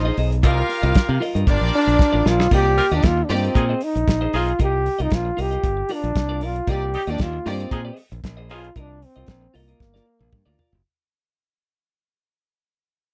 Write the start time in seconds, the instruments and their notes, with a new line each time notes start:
Already playing: trombone D#4, string section D#4 D#5, horn section F4 G#4 C5
0.05 clean electric guitar G#4 C5 D#5
0.17 fingered electric bass B1, clean electric guitar G#4 C5 D#5, open hi-hat
0.31 muted clean electric guitar stroke, closed hi-hat
0.43 fingered electric bass C2, clean electric guitar F4 A#4 D#5, horn section F4 G4 A#4, string section F4 F5, kick, closed hi-hat
0.58 muted clean electric guitar stroke
0.69 muted clean electric guitar stroke, open hi-hat
0.83 fingered electric bass C2, clean electric guitar F4 A#4 D#5, closed hi-hat
0.95 muted clean electric guitar stroke, kick, snare, closed hi-hat
1.08 fingered electric bass C3, muted clean electric guitar stroke
1.20 clean electric guitar F4 A#4 D#5, open hi-hat
1.35 fingered electric bass G2, clean electric guitar F4 A#4 D#5, closed hi-hat
1.47 fingered electric bass G1, string section D4 D5, horn section F4 G4 A#4, muted clean electric guitar stroke, kick, closed hi-hat
1.61 fingered electric bass A#1, muted clean electric guitar stroke
1.72 trombone D4, open hi-hat
1.87 fingered electric bass A#1, muted clean electric guitar stroke, closed hi-hat
1.99 muted clean electric guitar stroke, kick, snare
2.13 fingered electric bass A1, clean electric guitar F4 A#4 D5
2.25 fingered electric bass A#1, clean electric guitar F4 A#4 D5, trombone F4, snare
2.39 fingered electric bass B1, muted clean electric guitar stroke, snare
2.51 fingered electric bass C2, string section A#3 G4 D5, clean electric guitar F4 A#4 D#5, trombone G4, kick, crash
2.65 muted clean electric guitar stroke
2.77 horn section F4 G4 A#4, muted clean electric guitar stroke, open hi-hat
2.91 fingered electric bass D#2, string section A#3 G4 D5, trombone D4, clean electric guitar F4 A#4 D#5, closed hi-hat
3.03 fingered electric bass D#2, trombone F4, muted clean electric guitar stroke, kick, snare, closed hi-hat
3.17 muted clean electric guitar stroke
3.24 trombone D4
3.29 fingered electric bass G2, string section A#3 G4 D5, trombone C4, clean electric guitar F4 A#4 D#5, open hi-hat
3.43 clean electric guitar F4 A#4 D#5, closed hi-hat
3.55 fingered electric bass A#2, horn section D#4 F4 G#4, muted clean electric guitar stroke, kick, closed hi-hat
3.69 clean electric guitar G#4 C5 D#5
3.81 trombone D#4, muted clean electric guitar stroke, open hi-hat
3.95 fingered electric bass A#1, muted clean electric guitar stroke, closed hi-hat
4.07 fingered electric bass A#1, muted clean electric guitar stroke, kick, snare, closed hi-hat
4.21 clean electric guitar G#4 C5 D#5
4.33 fingered electric bass B1, horn section D#4 F4 G#4, trombone F4, clean electric guitar G#4 C5 D#5, open hi-hat
4.47 muted clean electric guitar stroke, closed hi-hat
4.59 fingered electric bass C2, clean electric guitar F4 A#4 D#5, trombone G4, kick, closed hi-hat
4.73 muted clean electric guitar stroke
4.85 muted clean electric guitar stroke, open hi-hat
4.99 fingered electric bass C2, trombone D#4, clean electric guitar F4 A#4 D#5, closed hi-hat
5.10 fingered electric bass A#1, muted clean electric guitar stroke, kick, snare, closed hi-hat
5.15 trombone F4
5.25 muted clean electric guitar stroke
5.37 fingered electric bass C2, clean electric guitar F4 A#4 D#5, trombone G4, open hi-hat
5.51 clean electric guitar F4 A#4 D#5, closed hi-hat
5.64 fingered electric bass G1, kick, closed hi-hat
5.77 muted clean electric guitar stroke
5.89 clean electric guitar F4 A#4 D5, open hi-hat
5.93 trombone D4
6.03 fingered electric bass A#1, muted clean electric guitar stroke, closed hi-hat
6.15 fingered electric bass C2, muted clean electric guitar stroke, kick, snare, closed hi-hat
6.29 clean electric guitar F4 A#4 D5
6.41 fingered electric bass B1, clean electric guitar F4 A#4 D5, trombone F4, open hi-hat
6.55 muted clean electric guitar stroke, closed hi-hat
6.67 fingered electric bass C2, string section A#3 G4 D5, clean electric guitar F4 A#4 D#5, trombone G4, kick, closed hi-hat
6.82 muted clean electric guitar stroke
6.94 horn section G3 D#4 G4, muted clean electric guitar stroke, open hi-hat
7.07 fingered electric bass D#2, string section A#3 G4 D5, trombone D4, clean electric guitar F4 A#4 D#5, closed hi-hat
7.18 fingered electric bass D#2, trombone F4, muted clean electric guitar stroke, kick, snare, closed hi-hat
7.33 muted clean electric guitar stroke
7.46 fingered electric bass G2, string section A#3 G4 D5, trombone C4, clean electric guitar F4 A#4 D#5, open hi-hat
7.59 clean electric guitar F4 A#4 D#5, closed hi-hat
7.71 fingered electric bass A#2, horn section D#4 F4 G#4, kick, closed hi-hat
7.85 clean electric guitar G#4 C5 D#5
7.97 muted clean electric guitar stroke, open hi-hat
8.12 fingered electric bass A#1, muted clean electric guitar stroke, closed hi-hat
8.24 fingered electric bass A#1, muted clean electric guitar stroke, kick, snare, closed hi-hat
8.37 clean electric guitar G#4 C5 D#5
8.49 fingered electric bass B1, horn section D#4 F4 G#4, trombone F4, clean electric guitar G#4 C5 D#5, open hi-hat
8.64 muted clean electric guitar stroke, closed hi-hat
8.76 fingered electric bass C2, trombone D4, clean electric guitar F4 A#4 D#5, kick, closed hi-hat
8.90 muted clean electric guitar stroke
9.02 trombone C4, muted clean electric guitar stroke, open hi-hat
9.15 fingered electric bass C2, clean electric guitar F4 A#4 D#5, closed hi-hat
9.27 fingered electric bass A#1, muted clean electric guitar stroke, kick, snare, closed hi-hat
9.41 muted clean electric guitar stroke
9.54 fingered electric bass C2, trombone A#3, clean electric guitar F4 A#4 D#5, open hi-hat
9.68 clean electric guitar F4 A#4 D#5, closed hi-hat
9.80 fingered electric bass G1, muted clean electric guitar stroke, kick, snare
9.94 clean electric guitar F4 A#4 D5, snare
10.06 muted clean electric guitar stroke
10.20 fingered electric bass A#1, muted clean electric guitar stroke, high tom
10.32 fingered electric bass G2, muted clean electric guitar stroke, kick, mid tom
10.46 fingered electric bass D2, clean electric guitar F4 A#4 D5
10.58 clean electric guitar F4 A#4 D5, floor tom
10.72 fingered electric bass F#1, muted clean electric guitar stroke, floor tom